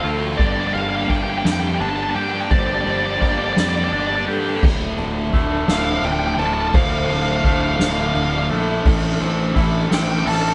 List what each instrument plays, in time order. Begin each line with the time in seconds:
Already playing: clean electric guitar D3 A3 C4, analog synth pad F3 C4 D4 A4
0.00 distorted electric guitar D2 A2, fingered electric bass D2, overdriven electric guitar C4 F4, vibraphone A4, lead electric guitar F5
0.08 distorted electric guitar D2 A2, overdriven electric guitar C4 F4
0.16 distorted electric guitar D2 A2, overdriven electric guitar C4 F4
0.24 distorted electric guitar D2 A2, overdriven electric guitar C4 F4
0.31 distorted electric guitar D2 A2, overdriven electric guitar C4 F4
0.38 fingered electric bass G1, distorted electric guitar G2 D3, clean electric guitar G2, analog synth pad F3 A#3 D4 G4, overdriven electric guitar D4 G4, lead electric guitar D5, kick
0.46 distorted electric guitar G2 D3, overdriven electric guitar D4 G4, lead electric guitar D5
0.52 distorted electric guitar G2 D3, overdriven electric guitar D4 G4, lead electric guitar D5
0.60 distorted electric guitar G2 D3, overdriven electric guitar D4 G4, lead electric guitar D5
0.67 distorted electric guitar G2, overdriven electric guitar D4 G4, lead electric guitar D5
0.71 fingered electric bass G1, distorted electric guitar D3, clean electric guitar G3, vibraphone D5, lead electric guitar F5
0.77 distorted electric guitar G2 D3, overdriven electric guitar D4 G4
0.81 overdriven electric guitar D4, lead electric guitar F5
0.85 distorted electric guitar G2 D3, overdriven electric guitar G4
0.90 distorted electric guitar G2, overdriven electric guitar D4 G4, lead electric guitar F5
0.95 distorted electric guitar D3, overdriven electric guitar D4, lead electric guitar F5
1.01 distorted electric guitar G2 D3, overdriven electric guitar G4, lead electric guitar F5
1.08 fingered electric bass G1, distorted electric guitar G2 D3, clean electric guitar A#3, overdriven electric guitar D4 G4, vibraphone E5, lead electric guitar G5, kick
1.15 distorted electric guitar G2 D3, overdriven electric guitar D4 G4, lead electric guitar G5
1.21 distorted electric guitar G2, overdriven electric guitar D4 G4, lead electric guitar G5
1.27 distorted electric guitar D3, overdriven electric guitar D4 G4, lead electric guitar G5
1.32 distorted electric guitar G2 D3
1.37 distorted electric guitar G2, overdriven electric guitar D4 G4, lead electric guitar G5
1.42 fingered electric bass F2, distorted electric guitar D3, clean electric guitar G3, overdriven electric guitar D4, snare
1.46 distorted electric guitar G2 D3, overdriven electric guitar G4, lead electric guitar G5
1.52 distorted electric guitar G2, overdriven electric guitar D4 G4, lead electric guitar G5
1.57 distorted electric guitar D3, overdriven electric guitar D4 G4, lead electric guitar G5
1.64 distorted electric guitar G2 D3, overdriven electric guitar G4, lead electric guitar G5
1.69 distorted electric guitar G2 D3, overdriven electric guitar D4
1.75 overdriven electric guitar D4 G4, lead electric guitar G5
1.79 fingered electric bass G1, distorted electric guitar G2 D3, overdriven electric guitar D4 G4, vibraphone D5, lead electric guitar A5
1.88 distorted electric guitar G2 D3, overdriven electric guitar D4 G4, lead electric guitar A5
1.96 distorted electric guitar G2 D3, overdriven electric guitar D4 G4, lead electric guitar A5
2.03 distorted electric guitar G2 D3, overdriven electric guitar D4, lead electric guitar A5
2.08 distorted electric guitar G2 D3, overdriven electric guitar G4, lead electric guitar A5
2.13 fingered electric bass G2, overdriven electric guitar D4 G4, lead electric guitar G5
2.19 distorted electric guitar G2 D3, overdriven electric guitar D4 G4
2.24 distorted electric guitar G2 D3, overdriven electric guitar D4, lead electric guitar G5
2.29 overdriven electric guitar G4, lead electric guitar G5
2.34 distorted electric guitar G2 D3, overdriven electric guitar D4
2.38 distorted electric guitar G2, overdriven electric guitar G4, lead electric guitar G5
2.43 distorted electric guitar D3, overdriven electric guitar D4 G4
2.51 fingered electric bass G1, distorted electric guitar G2 D3, clean electric guitar G2, analog synth pad C4, overdriven electric guitar D4 G4, vibraphone C5, lead electric guitar D5, kick
2.59 distorted electric guitar G2 D3, overdriven electric guitar D4 G4, lead electric guitar D5
2.66 distorted electric guitar G2 D3, overdriven electric guitar D4 G4, lead electric guitar D5
2.74 distorted electric guitar G2 D3, overdriven electric guitar D4 G4, lead electric guitar D5
2.81 distorted electric guitar G2 D3, overdriven electric guitar D4 G4, lead electric guitar D5
2.86 fingered electric bass G1, distorted electric guitar G2, clean electric guitar G3, vibraphone C5
2.90 distorted electric guitar D3, overdriven electric guitar D4 G4, lead electric guitar D5
2.97 distorted electric guitar G2 D3, overdriven electric guitar D4 G4, lead electric guitar D5
3.03 distorted electric guitar G2 D3, lead electric guitar D5
3.07 distorted electric guitar G2, overdriven electric guitar D4 G4
3.13 distorted electric guitar D3, overdriven electric guitar D4 G4, lead electric guitar D5
3.18 fingered electric bass G1, distorted electric guitar G2 D3, clean electric guitar A#3, lead electric guitar D5, kick
3.23 distorted electric guitar G2, overdriven electric guitar D4 G4
3.29 distorted electric guitar D3, overdriven electric guitar D4 G4, lead electric guitar D5
3.35 distorted electric guitar G2 D3, overdriven electric guitar D4 G4, lead electric guitar D5
3.41 distorted electric guitar G2 D3
3.46 distorted electric guitar G2, overdriven electric guitar D4 G4, lead electric guitar D5
3.53 distorted electric guitar D3, clean electric guitar G3, overdriven electric guitar D4 G4, lead electric guitar D5, vibraphone D5, snare
3.57 fingered electric bass F2, distorted electric guitar G2, lead electric guitar D5
3.62 distorted electric guitar G2 D3, overdriven electric guitar D4 G4
3.69 distorted electric guitar G2 D3, overdriven electric guitar D4 G4, lead electric guitar D5
3.76 distorted electric guitar D3, overdriven electric guitar D4 G4, lead electric guitar D5
3.81 distorted electric guitar G2, lead electric guitar D5
3.85 distorted electric guitar G2 D3, overdriven electric guitar D4 G4
3.92 fingered electric bass G1, distorted electric guitar G2 D3, overdriven electric guitar D4 G4, lead electric guitar D5
4.00 distorted electric guitar G2 D3, overdriven electric guitar D4 G4, lead electric guitar D5
4.07 distorted electric guitar G2 D3, overdriven electric guitar D4 G4, lead electric guitar D5
4.16 distorted electric guitar G2 D3, overdriven electric guitar D4 G4, lead electric guitar D5
4.24 distorted electric guitar G2 D3, fingered electric bass G2, overdriven electric guitar D4 G4, vibraphone A4
4.33 distorted electric guitar G2 D3, overdriven electric guitar D4 G4
4.40 distorted electric guitar G2 D3, overdriven electric guitar D4 G4
4.47 distorted electric guitar G2 D3, overdriven electric guitar D4 G4
4.55 distorted electric guitar G2 D3, overdriven electric guitar D4 G4
4.63 fingered electric bass D1, overdriven electric guitar D2 A2 D3 A3 E4, analog synth pad D3 F3 A3 D4, kick, crash
4.97 fingered electric bass D1, clean electric guitar D3, vibraphone D5, ride
5.33 fingered electric bass D1, overdriven electric guitar A2 D3 A3 E4, vibraphone E6, kick, ride
5.68 fingered electric bass D1, overdriven electric guitar A2 D3 A3 E4, lead electric guitar F5, snare, ride
5.72 overdriven electric guitar D2
5.77 lead electric guitar F5
5.84 lead electric guitar F5
5.92 lead electric guitar F5
5.99 lead electric guitar F5
6.03 fingered electric bass D1, vibraphone D5, lead electric guitar G5, ride
6.12 lead electric guitar G5
6.20 lead electric guitar G5
6.27 lead electric guitar G5
6.34 fingered electric bass D1, lead electric guitar G5
6.39 overdriven electric guitar D3 A3 E4, lead electric guitar A5, ride
6.46 lead electric guitar A5
6.54 lead electric guitar A5
6.61 lead electric guitar A5
6.68 lead electric guitar A5
6.73 fingered electric bass D1, overdriven electric guitar D2 A2 D3 A3 E4, vibraphone C5, lead electric guitar F5, kick, ride
6.82 lead electric guitar F5
6.91 lead electric guitar F5
6.98 lead electric guitar F5
7.06 fingered electric bass D1, clean electric guitar D3, vibraphone C5, lead electric guitar F5, ride
7.13 lead electric guitar F5
7.22 lead electric guitar F5
7.29 lead electric guitar F5
7.36 lead electric guitar F5
7.44 fingered electric bass D1, overdriven electric guitar A2 D3 A3 E4, lead electric guitar F5, kick, ride
7.52 lead electric guitar F5
7.61 lead electric guitar F5
7.69 lead electric guitar F5
7.76 fingered electric bass D1, overdriven electric guitar E4, vibraphone D5, lead electric guitar F5, snare, ride
7.81 overdriven electric guitar D2 A2 D3 A3, lead electric guitar F5
7.92 lead electric guitar F5
8.00 lead electric guitar F5
8.06 lead electric guitar F5
8.14 fingered electric bass D1, lead electric guitar F5, ride
8.23 lead electric guitar F5
8.30 lead electric guitar F5
8.38 lead electric guitar F5
8.50 fingered electric bass A#1, overdriven electric guitar A3 E4, vibraphone A4, ride
8.54 overdriven electric guitar D3
8.85 fingered electric bass A1, overdriven electric guitar A2 E3 A3 C4 E4 A4, analog synth pad C3 E3, kick, ride
9.20 fingered electric bass A1, clean electric guitar C4, vibraphone C5, ride
9.56 fingered electric bass A1, overdriven electric guitar A3 C4 E4 A4, vibraphone E5, kick, ride
9.91 fingered electric bass A1, overdriven electric guitar A2 E3 A3 C4 E4 A4, lead electric guitar G5, snare, ride
10.03 lead electric guitar G5
10.11 lead electric guitar G5
10.19 lead electric guitar G5
10.26 fingered electric bass A1, clean electric guitar A4, vibraphone D5, lead electric guitar A5, ride
10.35 lead electric guitar A5
10.42 lead electric guitar A5
10.49 lead electric guitar A5